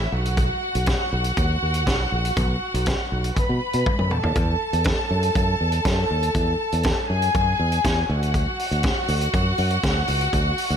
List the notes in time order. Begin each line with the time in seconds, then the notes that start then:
Already playing: E4 E5
0.12 B1 F#4 F#5
0.25 closed hi-hat
0.37 kick, closed hi-hat
0.75 B1, closed hi-hat
0.86 kick, snare, closed hi-hat
1.13 B1
1.24 closed hi-hat
1.37 D#2, kick, closed hi-hat
1.63 D#2
1.74 closed hi-hat
1.87 B1, kick, snare, closed hi-hat
2.12 A#1
2.25 closed hi-hat
2.37 B1, kick, closed hi-hat
2.74 B1, closed hi-hat
2.86 kick, snare, closed hi-hat
3.12 B1
3.24 closed hi-hat
3.36 B4 B5, kick, closed hi-hat
3.49 B2
3.73 B2, closed hi-hat
3.86 kick, high tom
3.99 F#2, mid tom
4.10 E2 A4 A5, mid tom
4.23 D#2, floor tom
4.35 E2, kick, closed hi-hat
4.73 E2, closed hi-hat
4.84 kick, snare, closed hi-hat
5.11 F#2
5.23 closed hi-hat
5.35 F#2, kick, closed hi-hat
5.61 E2
5.72 closed hi-hat
5.85 F#2, kick, snare, closed hi-hat
6.11 D#2
6.23 closed hi-hat
6.35 E2, kick, closed hi-hat
6.72 E2, closed hi-hat
6.83 kick, snare, closed hi-hat
7.09 F#2 G#4 G#5
7.22 closed hi-hat
7.35 F#2, kick, closed hi-hat
7.60 E2
7.72 closed hi-hat
7.85 E2, kick, snare, closed hi-hat
8.09 D2 F#4 F#5
8.23 closed hi-hat
8.34 kick, closed hi-hat
8.59 open hi-hat
8.71 D2, closed hi-hat
8.83 kick, snare, closed hi-hat
9.08 D2, open hi-hat
9.21 closed hi-hat
9.34 F#2, kick, closed hi-hat
9.58 F#2, open hi-hat
9.70 closed hi-hat
9.84 D2, kick, snare, closed hi-hat
10.08 C#2, open hi-hat
10.21 closed hi-hat
10.33 D2, kick, closed hi-hat
10.58 open hi-hat
10.70 D2, closed hi-hat